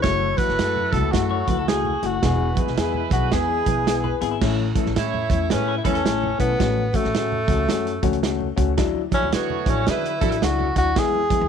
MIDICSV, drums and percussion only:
0, 0, Header, 1, 2, 480
1, 0, Start_track
1, 0, Key_signature, 3, "major"
1, 0, Tempo, 546448
1, 33, Time_signature, 4, 2, 24, 8
1, 10088, End_track
2, 0, Start_track
2, 0, Title_t, "Drums"
2, 33, Note_on_c, 9, 42, 76
2, 34, Note_on_c, 9, 36, 102
2, 34, Note_on_c, 9, 38, 110
2, 121, Note_off_c, 9, 42, 0
2, 122, Note_off_c, 9, 36, 0
2, 122, Note_off_c, 9, 38, 0
2, 185, Note_on_c, 9, 62, 33
2, 273, Note_off_c, 9, 62, 0
2, 326, Note_on_c, 9, 63, 79
2, 334, Note_on_c, 9, 36, 84
2, 337, Note_on_c, 9, 42, 70
2, 413, Note_off_c, 9, 63, 0
2, 422, Note_off_c, 9, 36, 0
2, 425, Note_off_c, 9, 42, 0
2, 428, Note_on_c, 9, 38, 29
2, 515, Note_on_c, 9, 42, 80
2, 516, Note_off_c, 9, 38, 0
2, 519, Note_on_c, 9, 38, 107
2, 603, Note_off_c, 9, 42, 0
2, 607, Note_off_c, 9, 38, 0
2, 667, Note_on_c, 9, 64, 69
2, 754, Note_off_c, 9, 64, 0
2, 810, Note_on_c, 9, 63, 59
2, 813, Note_on_c, 9, 36, 94
2, 822, Note_on_c, 9, 42, 70
2, 897, Note_off_c, 9, 63, 0
2, 901, Note_off_c, 9, 36, 0
2, 910, Note_off_c, 9, 42, 0
2, 995, Note_on_c, 9, 36, 79
2, 995, Note_on_c, 9, 62, 30
2, 997, Note_on_c, 9, 38, 114
2, 1003, Note_on_c, 9, 42, 92
2, 1083, Note_off_c, 9, 36, 0
2, 1083, Note_off_c, 9, 62, 0
2, 1085, Note_off_c, 9, 38, 0
2, 1091, Note_off_c, 9, 42, 0
2, 1140, Note_on_c, 9, 62, 27
2, 1228, Note_off_c, 9, 62, 0
2, 1295, Note_on_c, 9, 42, 70
2, 1297, Note_on_c, 9, 36, 78
2, 1307, Note_on_c, 9, 63, 75
2, 1383, Note_off_c, 9, 42, 0
2, 1385, Note_off_c, 9, 36, 0
2, 1395, Note_off_c, 9, 63, 0
2, 1478, Note_on_c, 9, 38, 102
2, 1481, Note_on_c, 9, 42, 88
2, 1486, Note_on_c, 9, 62, 34
2, 1566, Note_off_c, 9, 38, 0
2, 1569, Note_off_c, 9, 42, 0
2, 1574, Note_off_c, 9, 62, 0
2, 1625, Note_on_c, 9, 64, 76
2, 1713, Note_off_c, 9, 64, 0
2, 1780, Note_on_c, 9, 42, 60
2, 1867, Note_off_c, 9, 42, 0
2, 1955, Note_on_c, 9, 42, 82
2, 1956, Note_on_c, 9, 38, 104
2, 1957, Note_on_c, 9, 36, 96
2, 2043, Note_off_c, 9, 38, 0
2, 2043, Note_off_c, 9, 42, 0
2, 2045, Note_off_c, 9, 36, 0
2, 2106, Note_on_c, 9, 62, 35
2, 2193, Note_off_c, 9, 62, 0
2, 2243, Note_on_c, 9, 63, 74
2, 2256, Note_on_c, 9, 36, 92
2, 2257, Note_on_c, 9, 42, 64
2, 2331, Note_off_c, 9, 63, 0
2, 2344, Note_off_c, 9, 36, 0
2, 2344, Note_off_c, 9, 42, 0
2, 2348, Note_on_c, 9, 38, 33
2, 2435, Note_off_c, 9, 38, 0
2, 2436, Note_on_c, 9, 42, 89
2, 2437, Note_on_c, 9, 62, 33
2, 2439, Note_on_c, 9, 38, 112
2, 2523, Note_off_c, 9, 42, 0
2, 2524, Note_off_c, 9, 62, 0
2, 2527, Note_off_c, 9, 38, 0
2, 2583, Note_on_c, 9, 62, 32
2, 2583, Note_on_c, 9, 64, 69
2, 2671, Note_off_c, 9, 62, 0
2, 2671, Note_off_c, 9, 64, 0
2, 2723, Note_on_c, 9, 63, 65
2, 2734, Note_on_c, 9, 36, 99
2, 2739, Note_on_c, 9, 42, 77
2, 2811, Note_off_c, 9, 63, 0
2, 2821, Note_off_c, 9, 36, 0
2, 2827, Note_off_c, 9, 42, 0
2, 2913, Note_on_c, 9, 38, 106
2, 2915, Note_on_c, 9, 36, 79
2, 2916, Note_on_c, 9, 62, 34
2, 2919, Note_on_c, 9, 42, 86
2, 3001, Note_off_c, 9, 38, 0
2, 3003, Note_off_c, 9, 36, 0
2, 3004, Note_off_c, 9, 62, 0
2, 3007, Note_off_c, 9, 42, 0
2, 3059, Note_on_c, 9, 62, 28
2, 3147, Note_off_c, 9, 62, 0
2, 3217, Note_on_c, 9, 42, 67
2, 3218, Note_on_c, 9, 36, 78
2, 3222, Note_on_c, 9, 63, 74
2, 3305, Note_off_c, 9, 42, 0
2, 3306, Note_off_c, 9, 36, 0
2, 3310, Note_off_c, 9, 63, 0
2, 3400, Note_on_c, 9, 38, 111
2, 3403, Note_on_c, 9, 42, 91
2, 3407, Note_on_c, 9, 62, 30
2, 3488, Note_off_c, 9, 38, 0
2, 3491, Note_off_c, 9, 42, 0
2, 3495, Note_off_c, 9, 62, 0
2, 3550, Note_on_c, 9, 64, 72
2, 3638, Note_off_c, 9, 64, 0
2, 3701, Note_on_c, 9, 42, 65
2, 3789, Note_off_c, 9, 42, 0
2, 3876, Note_on_c, 9, 49, 88
2, 3878, Note_on_c, 9, 38, 98
2, 3879, Note_on_c, 9, 36, 89
2, 3964, Note_off_c, 9, 49, 0
2, 3965, Note_off_c, 9, 38, 0
2, 3966, Note_off_c, 9, 36, 0
2, 4035, Note_on_c, 9, 62, 31
2, 4123, Note_off_c, 9, 62, 0
2, 4176, Note_on_c, 9, 63, 69
2, 4177, Note_on_c, 9, 36, 91
2, 4178, Note_on_c, 9, 42, 69
2, 4264, Note_off_c, 9, 63, 0
2, 4265, Note_off_c, 9, 36, 0
2, 4266, Note_off_c, 9, 42, 0
2, 4269, Note_on_c, 9, 38, 32
2, 4356, Note_on_c, 9, 42, 80
2, 4357, Note_off_c, 9, 38, 0
2, 4360, Note_on_c, 9, 38, 105
2, 4444, Note_off_c, 9, 42, 0
2, 4448, Note_off_c, 9, 38, 0
2, 4514, Note_on_c, 9, 62, 34
2, 4514, Note_on_c, 9, 64, 69
2, 4602, Note_off_c, 9, 62, 0
2, 4602, Note_off_c, 9, 64, 0
2, 4654, Note_on_c, 9, 36, 99
2, 4655, Note_on_c, 9, 63, 68
2, 4660, Note_on_c, 9, 42, 72
2, 4742, Note_off_c, 9, 36, 0
2, 4743, Note_off_c, 9, 63, 0
2, 4748, Note_off_c, 9, 42, 0
2, 4833, Note_on_c, 9, 38, 103
2, 4838, Note_on_c, 9, 42, 92
2, 4845, Note_on_c, 9, 62, 29
2, 4920, Note_off_c, 9, 38, 0
2, 4926, Note_off_c, 9, 42, 0
2, 4933, Note_off_c, 9, 62, 0
2, 5138, Note_on_c, 9, 36, 82
2, 5138, Note_on_c, 9, 42, 63
2, 5153, Note_on_c, 9, 63, 72
2, 5226, Note_off_c, 9, 36, 0
2, 5226, Note_off_c, 9, 42, 0
2, 5226, Note_on_c, 9, 42, 47
2, 5241, Note_off_c, 9, 63, 0
2, 5314, Note_off_c, 9, 42, 0
2, 5320, Note_on_c, 9, 38, 111
2, 5323, Note_on_c, 9, 42, 87
2, 5335, Note_on_c, 9, 62, 32
2, 5408, Note_off_c, 9, 38, 0
2, 5411, Note_off_c, 9, 42, 0
2, 5422, Note_off_c, 9, 62, 0
2, 5477, Note_on_c, 9, 62, 31
2, 5477, Note_on_c, 9, 64, 70
2, 5564, Note_off_c, 9, 62, 0
2, 5564, Note_off_c, 9, 64, 0
2, 5619, Note_on_c, 9, 36, 88
2, 5621, Note_on_c, 9, 42, 69
2, 5707, Note_off_c, 9, 36, 0
2, 5709, Note_off_c, 9, 42, 0
2, 5797, Note_on_c, 9, 42, 74
2, 5798, Note_on_c, 9, 36, 91
2, 5798, Note_on_c, 9, 38, 97
2, 5801, Note_on_c, 9, 62, 28
2, 5885, Note_off_c, 9, 42, 0
2, 5886, Note_off_c, 9, 36, 0
2, 5886, Note_off_c, 9, 38, 0
2, 5889, Note_off_c, 9, 62, 0
2, 5952, Note_on_c, 9, 62, 36
2, 6040, Note_off_c, 9, 62, 0
2, 6087, Note_on_c, 9, 63, 75
2, 6095, Note_on_c, 9, 36, 80
2, 6098, Note_on_c, 9, 42, 65
2, 6175, Note_off_c, 9, 63, 0
2, 6183, Note_off_c, 9, 36, 0
2, 6186, Note_off_c, 9, 42, 0
2, 6186, Note_on_c, 9, 38, 35
2, 6274, Note_off_c, 9, 38, 0
2, 6275, Note_on_c, 9, 42, 77
2, 6279, Note_on_c, 9, 38, 101
2, 6363, Note_off_c, 9, 42, 0
2, 6367, Note_off_c, 9, 38, 0
2, 6431, Note_on_c, 9, 64, 71
2, 6519, Note_off_c, 9, 64, 0
2, 6567, Note_on_c, 9, 63, 65
2, 6571, Note_on_c, 9, 36, 102
2, 6577, Note_on_c, 9, 42, 76
2, 6655, Note_off_c, 9, 63, 0
2, 6659, Note_off_c, 9, 36, 0
2, 6665, Note_off_c, 9, 42, 0
2, 6752, Note_on_c, 9, 38, 111
2, 6758, Note_on_c, 9, 42, 95
2, 6840, Note_off_c, 9, 38, 0
2, 6846, Note_off_c, 9, 42, 0
2, 6898, Note_on_c, 9, 62, 28
2, 6910, Note_on_c, 9, 42, 51
2, 6986, Note_off_c, 9, 62, 0
2, 6997, Note_off_c, 9, 42, 0
2, 7051, Note_on_c, 9, 42, 66
2, 7053, Note_on_c, 9, 36, 87
2, 7063, Note_on_c, 9, 63, 73
2, 7138, Note_off_c, 9, 42, 0
2, 7140, Note_on_c, 9, 42, 42
2, 7141, Note_off_c, 9, 36, 0
2, 7151, Note_off_c, 9, 63, 0
2, 7228, Note_off_c, 9, 42, 0
2, 7231, Note_on_c, 9, 38, 101
2, 7234, Note_on_c, 9, 42, 92
2, 7318, Note_off_c, 9, 38, 0
2, 7321, Note_off_c, 9, 42, 0
2, 7383, Note_on_c, 9, 62, 33
2, 7383, Note_on_c, 9, 64, 65
2, 7470, Note_off_c, 9, 62, 0
2, 7470, Note_off_c, 9, 64, 0
2, 7532, Note_on_c, 9, 42, 64
2, 7533, Note_on_c, 9, 36, 93
2, 7620, Note_off_c, 9, 42, 0
2, 7621, Note_off_c, 9, 36, 0
2, 7708, Note_on_c, 9, 42, 81
2, 7708, Note_on_c, 9, 62, 29
2, 7709, Note_on_c, 9, 38, 96
2, 7711, Note_on_c, 9, 36, 107
2, 7796, Note_off_c, 9, 42, 0
2, 7796, Note_off_c, 9, 62, 0
2, 7797, Note_off_c, 9, 38, 0
2, 7799, Note_off_c, 9, 36, 0
2, 7865, Note_on_c, 9, 62, 35
2, 7953, Note_off_c, 9, 62, 0
2, 8005, Note_on_c, 9, 63, 67
2, 8010, Note_on_c, 9, 36, 83
2, 8011, Note_on_c, 9, 42, 61
2, 8093, Note_off_c, 9, 63, 0
2, 8098, Note_off_c, 9, 36, 0
2, 8099, Note_off_c, 9, 42, 0
2, 8190, Note_on_c, 9, 42, 84
2, 8193, Note_on_c, 9, 38, 101
2, 8194, Note_on_c, 9, 62, 34
2, 8277, Note_off_c, 9, 42, 0
2, 8281, Note_off_c, 9, 38, 0
2, 8282, Note_off_c, 9, 62, 0
2, 8343, Note_on_c, 9, 64, 66
2, 8431, Note_off_c, 9, 64, 0
2, 8486, Note_on_c, 9, 63, 61
2, 8487, Note_on_c, 9, 36, 95
2, 8493, Note_on_c, 9, 42, 79
2, 8573, Note_off_c, 9, 63, 0
2, 8575, Note_off_c, 9, 36, 0
2, 8581, Note_off_c, 9, 42, 0
2, 8667, Note_on_c, 9, 38, 111
2, 8669, Note_on_c, 9, 62, 30
2, 8673, Note_on_c, 9, 42, 89
2, 8755, Note_off_c, 9, 38, 0
2, 8757, Note_off_c, 9, 62, 0
2, 8761, Note_off_c, 9, 42, 0
2, 8820, Note_on_c, 9, 62, 29
2, 8831, Note_on_c, 9, 42, 56
2, 8908, Note_off_c, 9, 62, 0
2, 8919, Note_off_c, 9, 42, 0
2, 8972, Note_on_c, 9, 36, 90
2, 8972, Note_on_c, 9, 42, 61
2, 8985, Note_on_c, 9, 63, 71
2, 9060, Note_off_c, 9, 36, 0
2, 9060, Note_off_c, 9, 42, 0
2, 9063, Note_on_c, 9, 42, 52
2, 9073, Note_off_c, 9, 63, 0
2, 9151, Note_off_c, 9, 42, 0
2, 9154, Note_on_c, 9, 38, 96
2, 9157, Note_on_c, 9, 42, 84
2, 9167, Note_on_c, 9, 62, 33
2, 9242, Note_off_c, 9, 38, 0
2, 9245, Note_off_c, 9, 42, 0
2, 9254, Note_off_c, 9, 62, 0
2, 9314, Note_on_c, 9, 62, 32
2, 9314, Note_on_c, 9, 64, 66
2, 9402, Note_off_c, 9, 62, 0
2, 9402, Note_off_c, 9, 64, 0
2, 9451, Note_on_c, 9, 42, 62
2, 9452, Note_on_c, 9, 36, 82
2, 9539, Note_off_c, 9, 42, 0
2, 9540, Note_off_c, 9, 36, 0
2, 9628, Note_on_c, 9, 42, 77
2, 9629, Note_on_c, 9, 38, 101
2, 9630, Note_on_c, 9, 36, 113
2, 9635, Note_on_c, 9, 62, 28
2, 9716, Note_off_c, 9, 42, 0
2, 9717, Note_off_c, 9, 38, 0
2, 9718, Note_off_c, 9, 36, 0
2, 9723, Note_off_c, 9, 62, 0
2, 9790, Note_on_c, 9, 62, 35
2, 9878, Note_off_c, 9, 62, 0
2, 9928, Note_on_c, 9, 63, 74
2, 9929, Note_on_c, 9, 36, 89
2, 9931, Note_on_c, 9, 42, 61
2, 10016, Note_off_c, 9, 63, 0
2, 10017, Note_off_c, 9, 36, 0
2, 10019, Note_off_c, 9, 42, 0
2, 10088, End_track
0, 0, End_of_file